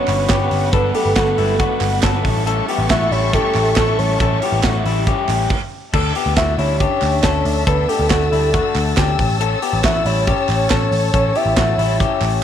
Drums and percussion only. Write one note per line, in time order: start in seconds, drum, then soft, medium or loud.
0.08 clap medium
0.08 open hi-hat medium
0.29 kick loud
0.29 snare loud
0.29 clap medium
0.29 hi-hat pedal medium
0.29 ride medium
0.51 open hi-hat medium
0.73 kick loud
0.73 hi-hat pedal medium
0.73 ride medium
0.95 open hi-hat medium
1.16 kick loud
1.16 snare loud
1.16 clap medium
1.16 hi-hat pedal medium
1.16 ride medium
1.38 open hi-hat medium
1.60 kick loud
1.60 hi-hat pedal medium
1.60 ride medium
1.81 clap medium
1.81 open hi-hat medium
2.03 kick loud
2.03 snare loud
2.03 clap loud
2.03 hi-hat pedal medium
2.03 ride medium
2.25 kick loud
2.25 open hi-hat medium
2.47 hi-hat pedal medium
2.47 ride medium
2.69 open hi-hat medium
2.90 kick loud
2.90 snare loud
2.90 clap medium
2.90 hi-hat pedal medium
2.90 ride medium
3.12 open hi-hat medium
3.33 kick loud
3.33 hi-hat pedal medium
3.33 ride medium
3.54 clap medium
3.54 open hi-hat medium
3.76 kick loud
3.76 snare loud
3.76 clap loud
3.76 hi-hat pedal medium
3.76 ride medium
3.99 open hi-hat medium
4.20 kick loud
4.20 hi-hat pedal medium
4.20 ride medium
4.42 open hi-hat medium
4.63 kick loud
4.63 snare loud
4.63 clap medium
4.63 ride medium
4.86 open hi-hat medium
5.07 kick loud
5.07 hi-hat pedal medium
5.07 ride medium
5.29 clap medium
5.29 open hi-hat medium
5.50 kick loud
5.50 crash medium
5.94 kick loud
5.94 crash loud
6.15 open hi-hat medium
6.36 kick loud
6.36 snare loud
6.36 clap medium
6.36 hi-hat pedal medium
6.36 ride medium
6.59 open hi-hat medium
6.80 kick loud
6.80 hi-hat pedal medium
6.80 ride medium
7.02 clap medium
7.02 open hi-hat medium
7.23 kick loud
7.23 snare loud
7.23 clap loud
7.23 hi-hat pedal medium
7.23 ride medium
7.45 open hi-hat medium
7.67 kick loud
7.67 hi-hat pedal medium
7.67 ride medium
7.89 open hi-hat medium
8.10 kick loud
8.10 snare loud
8.10 clap medium
8.10 hi-hat pedal medium
8.10 ride medium
8.33 open hi-hat medium
8.54 kick loud
8.54 hi-hat pedal medium
8.54 ride medium
8.76 clap medium
8.76 open hi-hat medium
8.97 kick loud
8.97 snare loud
8.97 clap loud
8.97 hi-hat pedal medium
8.97 ride medium
9.19 kick loud
9.19 open hi-hat medium
9.41 hi-hat pedal medium
9.41 ride medium
9.62 open hi-hat medium
9.84 kick loud
9.84 snare loud
9.84 clap medium
9.84 ride medium
10.06 open hi-hat medium
10.27 kick loud
10.27 hi-hat pedal medium
10.27 ride medium
10.49 clap medium
10.49 open hi-hat medium
10.70 kick loud
10.70 snare loud
10.70 clap loud
10.70 hi-hat pedal medium
10.70 ride medium
10.92 open hi-hat medium
11.14 kick loud
11.14 hi-hat pedal medium
11.14 ride medium
11.35 open hi-hat medium
11.57 kick loud
11.57 snare loud
11.57 clap medium
11.57 hi-hat pedal medium
11.57 ride medium
11.79 open hi-hat medium
12.00 kick loud
12.00 hi-hat pedal medium
12.00 ride medium
12.21 clap medium
12.21 open hi-hat medium